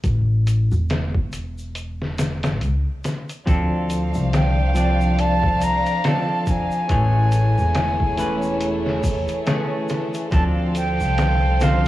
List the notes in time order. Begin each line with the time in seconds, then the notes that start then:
0.04 A1, kick, closed hi-hat, shaker
0.47 closed hi-hat, shaker
0.72 E1, shaker
0.89 snare, closed hi-hat, shaker
1.15 kick
1.33 closed hi-hat, shaker
1.58 shaker
1.75 closed hi-hat, shaker
2.02 snare
2.18 snare, closed hi-hat, shaker
2.43 snare, closed hi-hat, shaker
2.61 C#2, closed hi-hat, shaker
3.04 snare, closed hi-hat, shaker
3.29 closed hi-hat, shaker
3.46 D2 F3 A3 C4 D4 A4 C5 F5, kick, closed hi-hat, shaker
3.90 closed hi-hat, shaker
4.14 C2, shaker
4.33 G5, snare, closed hi-hat, shaker
4.75 F3 C4 D4 D5, closed hi-hat, shaker
5.01 shaker
5.18 A5, closed hi-hat, shaker
5.43 kick
5.61 A#5, closed hi-hat, shaker
5.86 closed hi-hat, shaker
6.04 F3 C4 D4 A4 A5, snare, closed hi-hat, shaker
6.47 G#5, kick, closed hi-hat, shaker
6.71 shaker
6.89 A1 E3 A3 C#4 E4 G#4 C#5, kick, closed hi-hat, shaker
7.32 closed hi-hat, shaker
7.58 E1, shaker
7.75 snare, closed hi-hat, shaker
8.00 kick
8.17 E3 A3 C#4 B4, closed hi-hat, shaker
8.42 shaker
8.61 closed hi-hat, shaker
8.87 snare
9.04 kick, open hi-hat, shaker
9.28 closed hi-hat, shaker
9.46 E3 A3 C#4 G#4, snare, closed hi-hat, shaker
9.89 snare, closed hi-hat, shaker
10.14 closed hi-hat, shaker
10.31 D2 F3 C4 D4 A4 C5 F5 A5, kick, closed hi-hat, shaker
10.75 G5, closed hi-hat, shaker
11.00 C2, shaker
11.18 snare, closed hi-hat, shaker
11.60 D3 F3 C4 C5 F5, snare, closed hi-hat, shaker